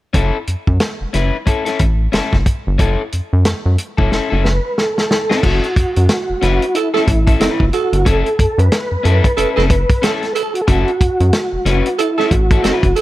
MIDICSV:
0, 0, Header, 1, 6, 480
1, 0, Start_track
1, 0, Key_signature, 3, "minor"
1, 0, Tempo, 660793
1, 105, Time_signature, 4, 2, 24, 8
1, 4424, Tempo, 654308
1, 9504, End_track
2, 0, Start_track
2, 0, Title_t, "Tenor saxophone"
2, 0, Program_c, 0, 66
2, 4912, Note_on_c, 0, 69, 88
2, 5002, Note_off_c, 0, 69, 0
2, 5045, Note_on_c, 0, 69, 108
2, 5108, Note_off_c, 0, 69, 0
2, 5386, Note_on_c, 0, 69, 80
2, 5478, Note_off_c, 0, 69, 0
2, 5627, Note_on_c, 0, 69, 90
2, 5954, Note_off_c, 0, 69, 0
2, 6826, Note_on_c, 0, 69, 94
2, 6919, Note_off_c, 0, 69, 0
2, 6972, Note_on_c, 0, 69, 96
2, 7034, Note_off_c, 0, 69, 0
2, 7314, Note_on_c, 0, 69, 84
2, 7404, Note_off_c, 0, 69, 0
2, 7548, Note_on_c, 0, 69, 87
2, 7701, Note_off_c, 0, 69, 0
2, 8745, Note_on_c, 0, 69, 96
2, 8837, Note_off_c, 0, 69, 0
2, 8888, Note_on_c, 0, 69, 109
2, 8950, Note_off_c, 0, 69, 0
2, 9221, Note_on_c, 0, 69, 83
2, 9314, Note_off_c, 0, 69, 0
2, 9462, Note_on_c, 0, 69, 95
2, 9504, Note_off_c, 0, 69, 0
2, 9504, End_track
3, 0, Start_track
3, 0, Title_t, "Tonewheel organ"
3, 0, Program_c, 1, 16
3, 3227, Note_on_c, 1, 71, 68
3, 3470, Note_on_c, 1, 69, 78
3, 3475, Note_off_c, 1, 71, 0
3, 3944, Note_on_c, 1, 66, 105
3, 3962, Note_off_c, 1, 69, 0
3, 4419, Note_off_c, 1, 66, 0
3, 4428, Note_on_c, 1, 66, 82
3, 4905, Note_on_c, 1, 64, 85
3, 4923, Note_off_c, 1, 66, 0
3, 5134, Note_off_c, 1, 64, 0
3, 5143, Note_on_c, 1, 64, 95
3, 5597, Note_off_c, 1, 64, 0
3, 5629, Note_on_c, 1, 66, 89
3, 5869, Note_on_c, 1, 69, 108
3, 5876, Note_off_c, 1, 66, 0
3, 6259, Note_on_c, 1, 71, 104
3, 6265, Note_off_c, 1, 69, 0
3, 7042, Note_off_c, 1, 71, 0
3, 7074, Note_on_c, 1, 71, 84
3, 7315, Note_on_c, 1, 69, 88
3, 7318, Note_off_c, 1, 71, 0
3, 7534, Note_on_c, 1, 71, 83
3, 7538, Note_off_c, 1, 69, 0
3, 7601, Note_off_c, 1, 71, 0
3, 7605, Note_on_c, 1, 69, 79
3, 7681, Note_off_c, 1, 69, 0
3, 7687, Note_on_c, 1, 66, 76
3, 7740, Note_off_c, 1, 66, 0
3, 7743, Note_on_c, 1, 69, 84
3, 7791, Note_on_c, 1, 66, 106
3, 7792, Note_off_c, 1, 69, 0
3, 8268, Note_off_c, 1, 66, 0
3, 8277, Note_on_c, 1, 66, 79
3, 8757, Note_on_c, 1, 64, 100
3, 8765, Note_off_c, 1, 66, 0
3, 8991, Note_on_c, 1, 66, 93
3, 8998, Note_off_c, 1, 64, 0
3, 9464, Note_on_c, 1, 69, 88
3, 9482, Note_off_c, 1, 66, 0
3, 9504, Note_off_c, 1, 69, 0
3, 9504, End_track
4, 0, Start_track
4, 0, Title_t, "Clean electric guitar"
4, 0, Program_c, 2, 27
4, 96, Note_on_c, 2, 61, 88
4, 107, Note_on_c, 2, 64, 86
4, 109, Note_on_c, 2, 69, 94
4, 259, Note_off_c, 2, 61, 0
4, 264, Note_off_c, 2, 64, 0
4, 266, Note_off_c, 2, 69, 0
4, 822, Note_on_c, 2, 61, 67
4, 829, Note_on_c, 2, 64, 83
4, 837, Note_on_c, 2, 71, 74
4, 983, Note_off_c, 2, 61, 0
4, 987, Note_off_c, 2, 64, 0
4, 991, Note_off_c, 2, 71, 0
4, 1058, Note_on_c, 2, 61, 57
4, 1066, Note_on_c, 2, 64, 60
4, 1073, Note_on_c, 2, 69, 71
4, 1192, Note_off_c, 2, 69, 0
4, 1193, Note_off_c, 2, 61, 0
4, 1197, Note_off_c, 2, 64, 0
4, 1200, Note_on_c, 2, 69, 68
4, 1209, Note_on_c, 2, 64, 61
4, 1217, Note_on_c, 2, 61, 52
4, 1324, Note_off_c, 2, 69, 0
4, 1328, Note_off_c, 2, 64, 0
4, 1332, Note_off_c, 2, 61, 0
4, 1541, Note_on_c, 2, 61, 73
4, 1548, Note_on_c, 2, 64, 78
4, 1554, Note_on_c, 2, 69, 93
4, 1704, Note_off_c, 2, 61, 0
4, 1707, Note_off_c, 2, 64, 0
4, 1710, Note_off_c, 2, 69, 0
4, 2021, Note_on_c, 2, 61, 86
4, 2026, Note_on_c, 2, 64, 87
4, 2035, Note_on_c, 2, 69, 93
4, 2184, Note_off_c, 2, 61, 0
4, 2187, Note_off_c, 2, 64, 0
4, 2191, Note_off_c, 2, 69, 0
4, 2887, Note_on_c, 2, 69, 75
4, 2895, Note_on_c, 2, 64, 69
4, 2902, Note_on_c, 2, 61, 63
4, 2975, Note_off_c, 2, 61, 0
4, 2984, Note_off_c, 2, 64, 0
4, 2984, Note_on_c, 2, 61, 54
4, 2991, Note_off_c, 2, 69, 0
4, 2992, Note_on_c, 2, 64, 60
4, 2999, Note_on_c, 2, 69, 62
4, 3116, Note_off_c, 2, 61, 0
4, 3116, Note_off_c, 2, 69, 0
4, 3120, Note_off_c, 2, 64, 0
4, 3125, Note_on_c, 2, 69, 74
4, 3134, Note_on_c, 2, 64, 59
4, 3141, Note_on_c, 2, 61, 57
4, 3246, Note_off_c, 2, 69, 0
4, 3251, Note_off_c, 2, 64, 0
4, 3254, Note_off_c, 2, 61, 0
4, 3846, Note_on_c, 2, 69, 76
4, 3850, Note_on_c, 2, 64, 72
4, 3857, Note_on_c, 2, 61, 69
4, 3934, Note_off_c, 2, 61, 0
4, 3940, Note_off_c, 2, 64, 0
4, 3942, Note_on_c, 2, 61, 78
4, 3948, Note_on_c, 2, 64, 82
4, 3950, Note_off_c, 2, 69, 0
4, 3958, Note_on_c, 2, 69, 100
4, 4102, Note_off_c, 2, 61, 0
4, 4105, Note_off_c, 2, 64, 0
4, 4110, Note_off_c, 2, 69, 0
4, 4662, Note_on_c, 2, 61, 87
4, 4670, Note_on_c, 2, 64, 86
4, 4674, Note_on_c, 2, 71, 92
4, 4823, Note_off_c, 2, 61, 0
4, 4827, Note_off_c, 2, 64, 0
4, 4828, Note_off_c, 2, 71, 0
4, 5045, Note_on_c, 2, 69, 84
4, 5053, Note_on_c, 2, 64, 74
4, 5063, Note_on_c, 2, 61, 69
4, 5166, Note_off_c, 2, 69, 0
4, 5170, Note_off_c, 2, 64, 0
4, 5175, Note_off_c, 2, 61, 0
4, 5288, Note_on_c, 2, 69, 74
4, 5294, Note_on_c, 2, 64, 56
4, 5300, Note_on_c, 2, 61, 51
4, 5375, Note_off_c, 2, 61, 0
4, 5376, Note_off_c, 2, 69, 0
4, 5379, Note_off_c, 2, 64, 0
4, 5384, Note_on_c, 2, 61, 76
4, 5393, Note_on_c, 2, 64, 94
4, 5401, Note_on_c, 2, 71, 93
4, 5550, Note_off_c, 2, 61, 0
4, 5555, Note_off_c, 2, 64, 0
4, 5559, Note_off_c, 2, 71, 0
4, 5863, Note_on_c, 2, 61, 88
4, 5871, Note_on_c, 2, 64, 86
4, 5874, Note_on_c, 2, 69, 94
4, 6024, Note_off_c, 2, 61, 0
4, 6028, Note_off_c, 2, 64, 0
4, 6030, Note_off_c, 2, 69, 0
4, 6582, Note_on_c, 2, 61, 77
4, 6589, Note_on_c, 2, 64, 100
4, 6594, Note_on_c, 2, 69, 89
4, 6744, Note_off_c, 2, 61, 0
4, 6747, Note_off_c, 2, 64, 0
4, 6750, Note_off_c, 2, 69, 0
4, 6830, Note_on_c, 2, 61, 55
4, 6834, Note_on_c, 2, 64, 65
4, 6843, Note_on_c, 2, 69, 67
4, 6959, Note_off_c, 2, 61, 0
4, 6961, Note_off_c, 2, 64, 0
4, 6961, Note_off_c, 2, 69, 0
4, 6970, Note_on_c, 2, 69, 78
4, 6979, Note_on_c, 2, 64, 67
4, 6985, Note_on_c, 2, 61, 70
4, 7098, Note_off_c, 2, 69, 0
4, 7102, Note_off_c, 2, 64, 0
4, 7105, Note_off_c, 2, 61, 0
4, 7306, Note_on_c, 2, 61, 79
4, 7315, Note_on_c, 2, 64, 76
4, 7321, Note_on_c, 2, 69, 91
4, 7465, Note_off_c, 2, 61, 0
4, 7470, Note_off_c, 2, 64, 0
4, 7473, Note_off_c, 2, 69, 0
4, 7787, Note_on_c, 2, 61, 86
4, 7795, Note_on_c, 2, 64, 87
4, 7801, Note_on_c, 2, 69, 97
4, 7945, Note_off_c, 2, 61, 0
4, 7950, Note_off_c, 2, 64, 0
4, 7952, Note_off_c, 2, 69, 0
4, 8507, Note_on_c, 2, 61, 93
4, 8515, Note_on_c, 2, 64, 79
4, 8523, Note_on_c, 2, 71, 89
4, 8665, Note_off_c, 2, 61, 0
4, 8669, Note_off_c, 2, 64, 0
4, 8673, Note_off_c, 2, 71, 0
4, 8890, Note_on_c, 2, 69, 86
4, 8900, Note_on_c, 2, 64, 76
4, 8903, Note_on_c, 2, 61, 65
4, 9007, Note_off_c, 2, 69, 0
4, 9012, Note_off_c, 2, 64, 0
4, 9014, Note_off_c, 2, 61, 0
4, 9132, Note_on_c, 2, 69, 73
4, 9138, Note_on_c, 2, 64, 64
4, 9145, Note_on_c, 2, 61, 55
4, 9208, Note_off_c, 2, 61, 0
4, 9217, Note_off_c, 2, 69, 0
4, 9217, Note_on_c, 2, 61, 74
4, 9220, Note_off_c, 2, 64, 0
4, 9227, Note_on_c, 2, 64, 79
4, 9234, Note_on_c, 2, 71, 82
4, 9385, Note_off_c, 2, 61, 0
4, 9391, Note_off_c, 2, 64, 0
4, 9394, Note_off_c, 2, 71, 0
4, 9504, End_track
5, 0, Start_track
5, 0, Title_t, "Analog synth bass"
5, 0, Program_c, 3, 38
5, 102, Note_on_c, 3, 30, 92
5, 224, Note_off_c, 3, 30, 0
5, 347, Note_on_c, 3, 42, 42
5, 404, Note_off_c, 3, 42, 0
5, 489, Note_on_c, 3, 42, 89
5, 570, Note_off_c, 3, 42, 0
5, 732, Note_on_c, 3, 30, 48
5, 770, Note_off_c, 3, 30, 0
5, 832, Note_on_c, 3, 30, 88
5, 950, Note_off_c, 3, 30, 0
5, 1308, Note_on_c, 3, 33, 76
5, 1509, Note_off_c, 3, 33, 0
5, 1550, Note_on_c, 3, 30, 41
5, 1607, Note_off_c, 3, 30, 0
5, 1693, Note_on_c, 3, 30, 79
5, 1773, Note_off_c, 3, 30, 0
5, 1941, Note_on_c, 3, 31, 94
5, 2018, Note_off_c, 3, 31, 0
5, 2028, Note_on_c, 3, 30, 96
5, 2149, Note_off_c, 3, 30, 0
5, 2276, Note_on_c, 3, 42, 47
5, 2332, Note_off_c, 3, 42, 0
5, 2419, Note_on_c, 3, 42, 89
5, 2497, Note_off_c, 3, 42, 0
5, 2513, Note_on_c, 3, 42, 47
5, 2570, Note_off_c, 3, 42, 0
5, 2656, Note_on_c, 3, 42, 92
5, 2735, Note_off_c, 3, 42, 0
5, 2892, Note_on_c, 3, 30, 76
5, 2973, Note_off_c, 3, 30, 0
5, 2994, Note_on_c, 3, 30, 45
5, 3051, Note_off_c, 3, 30, 0
5, 3142, Note_on_c, 3, 30, 94
5, 3338, Note_off_c, 3, 30, 0
5, 3947, Note_on_c, 3, 30, 107
5, 4067, Note_off_c, 3, 30, 0
5, 4186, Note_on_c, 3, 42, 49
5, 4243, Note_off_c, 3, 42, 0
5, 4336, Note_on_c, 3, 42, 84
5, 4413, Note_off_c, 3, 42, 0
5, 4575, Note_on_c, 3, 30, 47
5, 4612, Note_off_c, 3, 30, 0
5, 4672, Note_on_c, 3, 30, 87
5, 4790, Note_off_c, 3, 30, 0
5, 5146, Note_on_c, 3, 33, 93
5, 5347, Note_off_c, 3, 33, 0
5, 5387, Note_on_c, 3, 30, 44
5, 5445, Note_off_c, 3, 30, 0
5, 5531, Note_on_c, 3, 30, 83
5, 5612, Note_off_c, 3, 30, 0
5, 5772, Note_on_c, 3, 31, 98
5, 5852, Note_off_c, 3, 31, 0
5, 5871, Note_on_c, 3, 30, 88
5, 5990, Note_off_c, 3, 30, 0
5, 6114, Note_on_c, 3, 42, 52
5, 6170, Note_off_c, 3, 42, 0
5, 6251, Note_on_c, 3, 42, 91
5, 6332, Note_off_c, 3, 42, 0
5, 6496, Note_on_c, 3, 42, 47
5, 6534, Note_off_c, 3, 42, 0
5, 6596, Note_on_c, 3, 42, 91
5, 6713, Note_off_c, 3, 42, 0
5, 6839, Note_on_c, 3, 30, 49
5, 6894, Note_off_c, 3, 30, 0
5, 6982, Note_on_c, 3, 30, 96
5, 7178, Note_off_c, 3, 30, 0
5, 7792, Note_on_c, 3, 30, 109
5, 7910, Note_off_c, 3, 30, 0
5, 8030, Note_on_c, 3, 42, 52
5, 8087, Note_off_c, 3, 42, 0
5, 8175, Note_on_c, 3, 42, 92
5, 8254, Note_off_c, 3, 42, 0
5, 8413, Note_on_c, 3, 30, 53
5, 8451, Note_off_c, 3, 30, 0
5, 8505, Note_on_c, 3, 30, 94
5, 8626, Note_off_c, 3, 30, 0
5, 8988, Note_on_c, 3, 33, 89
5, 9187, Note_off_c, 3, 33, 0
5, 9230, Note_on_c, 3, 30, 42
5, 9287, Note_off_c, 3, 30, 0
5, 9369, Note_on_c, 3, 30, 80
5, 9449, Note_off_c, 3, 30, 0
5, 9504, End_track
6, 0, Start_track
6, 0, Title_t, "Drums"
6, 102, Note_on_c, 9, 42, 77
6, 103, Note_on_c, 9, 36, 94
6, 175, Note_off_c, 9, 42, 0
6, 176, Note_off_c, 9, 36, 0
6, 344, Note_on_c, 9, 42, 59
6, 417, Note_off_c, 9, 42, 0
6, 489, Note_on_c, 9, 36, 76
6, 562, Note_off_c, 9, 36, 0
6, 580, Note_on_c, 9, 42, 80
6, 583, Note_on_c, 9, 38, 111
6, 653, Note_off_c, 9, 42, 0
6, 656, Note_off_c, 9, 38, 0
6, 826, Note_on_c, 9, 42, 69
6, 830, Note_on_c, 9, 38, 32
6, 898, Note_off_c, 9, 42, 0
6, 902, Note_off_c, 9, 38, 0
6, 1066, Note_on_c, 9, 36, 73
6, 1066, Note_on_c, 9, 42, 73
6, 1138, Note_off_c, 9, 36, 0
6, 1139, Note_off_c, 9, 42, 0
6, 1206, Note_on_c, 9, 42, 53
6, 1215, Note_on_c, 9, 38, 32
6, 1279, Note_off_c, 9, 42, 0
6, 1287, Note_off_c, 9, 38, 0
6, 1302, Note_on_c, 9, 42, 78
6, 1307, Note_on_c, 9, 36, 90
6, 1374, Note_off_c, 9, 42, 0
6, 1379, Note_off_c, 9, 36, 0
6, 1547, Note_on_c, 9, 42, 71
6, 1554, Note_on_c, 9, 38, 94
6, 1620, Note_off_c, 9, 42, 0
6, 1627, Note_off_c, 9, 38, 0
6, 1691, Note_on_c, 9, 36, 78
6, 1694, Note_on_c, 9, 38, 35
6, 1763, Note_off_c, 9, 36, 0
6, 1767, Note_off_c, 9, 38, 0
6, 1787, Note_on_c, 9, 42, 64
6, 1788, Note_on_c, 9, 36, 94
6, 1860, Note_off_c, 9, 36, 0
6, 1860, Note_off_c, 9, 42, 0
6, 2027, Note_on_c, 9, 42, 79
6, 2029, Note_on_c, 9, 36, 106
6, 2100, Note_off_c, 9, 42, 0
6, 2101, Note_off_c, 9, 36, 0
6, 2269, Note_on_c, 9, 42, 59
6, 2342, Note_off_c, 9, 42, 0
6, 2506, Note_on_c, 9, 42, 88
6, 2508, Note_on_c, 9, 38, 111
6, 2578, Note_off_c, 9, 42, 0
6, 2581, Note_off_c, 9, 38, 0
6, 2747, Note_on_c, 9, 42, 69
6, 2820, Note_off_c, 9, 42, 0
6, 2894, Note_on_c, 9, 36, 77
6, 2966, Note_off_c, 9, 36, 0
6, 2992, Note_on_c, 9, 38, 51
6, 3065, Note_off_c, 9, 38, 0
6, 3233, Note_on_c, 9, 38, 63
6, 3306, Note_off_c, 9, 38, 0
6, 3472, Note_on_c, 9, 38, 62
6, 3545, Note_off_c, 9, 38, 0
6, 3617, Note_on_c, 9, 38, 68
6, 3690, Note_off_c, 9, 38, 0
6, 3711, Note_on_c, 9, 38, 85
6, 3784, Note_off_c, 9, 38, 0
6, 3857, Note_on_c, 9, 38, 85
6, 3930, Note_off_c, 9, 38, 0
6, 3947, Note_on_c, 9, 36, 103
6, 3948, Note_on_c, 9, 49, 92
6, 4019, Note_off_c, 9, 36, 0
6, 4021, Note_off_c, 9, 49, 0
6, 4094, Note_on_c, 9, 42, 33
6, 4166, Note_off_c, 9, 42, 0
6, 4187, Note_on_c, 9, 36, 92
6, 4188, Note_on_c, 9, 42, 71
6, 4259, Note_off_c, 9, 36, 0
6, 4261, Note_off_c, 9, 42, 0
6, 4331, Note_on_c, 9, 42, 48
6, 4404, Note_off_c, 9, 42, 0
6, 4422, Note_on_c, 9, 42, 85
6, 4425, Note_on_c, 9, 38, 113
6, 4496, Note_off_c, 9, 42, 0
6, 4498, Note_off_c, 9, 38, 0
6, 4669, Note_on_c, 9, 42, 76
6, 4673, Note_on_c, 9, 38, 38
6, 4742, Note_off_c, 9, 42, 0
6, 4746, Note_off_c, 9, 38, 0
6, 4813, Note_on_c, 9, 42, 45
6, 4887, Note_off_c, 9, 42, 0
6, 4907, Note_on_c, 9, 42, 82
6, 4980, Note_off_c, 9, 42, 0
6, 5060, Note_on_c, 9, 38, 37
6, 5133, Note_off_c, 9, 38, 0
6, 5147, Note_on_c, 9, 36, 99
6, 5147, Note_on_c, 9, 42, 85
6, 5220, Note_off_c, 9, 42, 0
6, 5221, Note_off_c, 9, 36, 0
6, 5291, Note_on_c, 9, 42, 48
6, 5292, Note_on_c, 9, 36, 101
6, 5365, Note_off_c, 9, 42, 0
6, 5366, Note_off_c, 9, 36, 0
6, 5389, Note_on_c, 9, 42, 80
6, 5396, Note_on_c, 9, 38, 94
6, 5462, Note_off_c, 9, 42, 0
6, 5469, Note_off_c, 9, 38, 0
6, 5532, Note_on_c, 9, 36, 81
6, 5605, Note_off_c, 9, 36, 0
6, 5626, Note_on_c, 9, 42, 76
6, 5700, Note_off_c, 9, 42, 0
6, 5773, Note_on_c, 9, 42, 58
6, 5847, Note_off_c, 9, 42, 0
6, 5870, Note_on_c, 9, 36, 105
6, 5870, Note_on_c, 9, 42, 85
6, 5944, Note_off_c, 9, 36, 0
6, 5944, Note_off_c, 9, 42, 0
6, 6016, Note_on_c, 9, 42, 34
6, 6090, Note_off_c, 9, 42, 0
6, 6111, Note_on_c, 9, 36, 87
6, 6113, Note_on_c, 9, 42, 73
6, 6185, Note_off_c, 9, 36, 0
6, 6186, Note_off_c, 9, 42, 0
6, 6258, Note_on_c, 9, 42, 43
6, 6331, Note_off_c, 9, 42, 0
6, 6351, Note_on_c, 9, 42, 88
6, 6353, Note_on_c, 9, 38, 126
6, 6424, Note_off_c, 9, 42, 0
6, 6427, Note_off_c, 9, 38, 0
6, 6596, Note_on_c, 9, 42, 75
6, 6669, Note_off_c, 9, 42, 0
6, 6737, Note_on_c, 9, 36, 83
6, 6739, Note_on_c, 9, 42, 51
6, 6810, Note_off_c, 9, 36, 0
6, 6812, Note_off_c, 9, 42, 0
6, 6835, Note_on_c, 9, 42, 79
6, 6909, Note_off_c, 9, 42, 0
6, 6986, Note_on_c, 9, 38, 37
6, 7060, Note_off_c, 9, 38, 0
6, 7072, Note_on_c, 9, 36, 99
6, 7072, Note_on_c, 9, 42, 82
6, 7145, Note_off_c, 9, 36, 0
6, 7146, Note_off_c, 9, 42, 0
6, 7216, Note_on_c, 9, 36, 105
6, 7217, Note_on_c, 9, 42, 53
6, 7289, Note_off_c, 9, 36, 0
6, 7290, Note_off_c, 9, 42, 0
6, 7313, Note_on_c, 9, 42, 87
6, 7320, Note_on_c, 9, 38, 103
6, 7386, Note_off_c, 9, 42, 0
6, 7393, Note_off_c, 9, 38, 0
6, 7458, Note_on_c, 9, 42, 34
6, 7463, Note_on_c, 9, 38, 36
6, 7531, Note_off_c, 9, 42, 0
6, 7536, Note_off_c, 9, 38, 0
6, 7553, Note_on_c, 9, 42, 78
6, 7626, Note_off_c, 9, 42, 0
6, 7696, Note_on_c, 9, 42, 54
6, 7770, Note_off_c, 9, 42, 0
6, 7790, Note_on_c, 9, 36, 101
6, 7790, Note_on_c, 9, 42, 79
6, 7863, Note_off_c, 9, 36, 0
6, 7863, Note_off_c, 9, 42, 0
6, 7936, Note_on_c, 9, 42, 30
6, 8009, Note_off_c, 9, 42, 0
6, 8031, Note_on_c, 9, 36, 91
6, 8032, Note_on_c, 9, 42, 72
6, 8104, Note_off_c, 9, 36, 0
6, 8105, Note_off_c, 9, 42, 0
6, 8175, Note_on_c, 9, 42, 41
6, 8248, Note_off_c, 9, 42, 0
6, 8266, Note_on_c, 9, 42, 90
6, 8269, Note_on_c, 9, 38, 119
6, 8340, Note_off_c, 9, 42, 0
6, 8342, Note_off_c, 9, 38, 0
6, 8510, Note_on_c, 9, 42, 77
6, 8514, Note_on_c, 9, 38, 35
6, 8583, Note_off_c, 9, 42, 0
6, 8587, Note_off_c, 9, 38, 0
6, 8654, Note_on_c, 9, 42, 46
6, 8728, Note_off_c, 9, 42, 0
6, 8750, Note_on_c, 9, 42, 83
6, 8824, Note_off_c, 9, 42, 0
6, 8902, Note_on_c, 9, 38, 37
6, 8976, Note_off_c, 9, 38, 0
6, 8988, Note_on_c, 9, 36, 102
6, 8988, Note_on_c, 9, 42, 79
6, 9062, Note_off_c, 9, 36, 0
6, 9062, Note_off_c, 9, 42, 0
6, 9132, Note_on_c, 9, 36, 105
6, 9133, Note_on_c, 9, 42, 48
6, 9205, Note_off_c, 9, 36, 0
6, 9206, Note_off_c, 9, 42, 0
6, 9228, Note_on_c, 9, 42, 74
6, 9235, Note_on_c, 9, 38, 88
6, 9302, Note_off_c, 9, 42, 0
6, 9309, Note_off_c, 9, 38, 0
6, 9369, Note_on_c, 9, 36, 82
6, 9372, Note_on_c, 9, 42, 35
6, 9443, Note_off_c, 9, 36, 0
6, 9445, Note_off_c, 9, 42, 0
6, 9465, Note_on_c, 9, 42, 67
6, 9504, Note_off_c, 9, 42, 0
6, 9504, End_track
0, 0, End_of_file